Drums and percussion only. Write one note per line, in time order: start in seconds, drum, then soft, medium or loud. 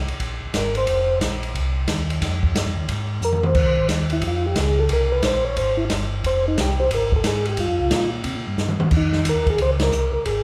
0.08 ride soft
0.20 kick soft
0.20 ride medium
0.54 kick soft
0.54 snare medium
0.54 hi-hat pedal medium
0.54 ride medium
0.75 ride soft
0.87 kick soft
0.87 ride medium
1.21 kick soft
1.21 snare medium
1.21 hi-hat pedal medium
1.21 ride medium
1.43 ride soft
1.55 kick soft
1.55 ride medium
1.88 kick soft
1.88 snare medium
1.88 hi-hat pedal medium
1.88 ride medium
2.10 ride soft
2.22 kick soft
2.22 snare soft
2.22 ride medium
2.43 kick medium
2.55 kick soft
2.55 snare medium
2.55 hi-hat pedal medium
2.55 ride medium
2.88 kick soft
2.88 ride medium
3.22 hi-hat pedal medium
3.33 mid tom medium
3.43 mid tom medium
3.55 kick medium
3.55 crash medium
3.89 kick soft
3.89 snare medium
3.89 hi-hat pedal medium
3.89 ride medium
4.10 ride soft
4.22 kick soft
4.22 ride medium
4.56 kick soft
4.56 snare medium
4.56 hi-hat pedal medium
4.56 ride medium
4.89 kick soft
4.89 ride medium
5.23 kick soft
5.23 snare medium
5.23 hi-hat pedal medium
5.23 ride medium
5.57 kick soft
5.57 ride medium
5.90 kick soft
5.90 snare medium
5.90 hi-hat pedal medium
5.90 ride medium
6.24 kick soft
6.24 ride medium
6.57 kick soft
6.57 snare medium
6.57 hi-hat pedal medium
6.57 ride medium
6.91 kick soft
6.91 ride medium
7.12 kick medium
7.24 kick soft
7.24 snare medium
7.24 hi-hat pedal medium
7.24 ride medium
7.45 ride soft
7.57 kick soft
7.57 ride medium
7.91 kick soft
7.91 snare medium
7.91 hi-hat pedal medium
7.91 ride medium
8.24 kick soft
8.24 ride medium
8.58 snare soft
8.58 hi-hat pedal soft
8.69 mid tom medium
8.80 mid tom medium
8.91 kick medium
8.91 crash medium
9.12 snare soft
9.25 kick soft
9.25 hi-hat pedal medium
9.25 ride medium
9.47 kick medium
9.47 ride soft
9.58 kick soft
9.58 ride medium
9.80 snare medium
9.80 ride medium
9.92 hi-hat pedal medium
10.25 kick soft
10.25 ride medium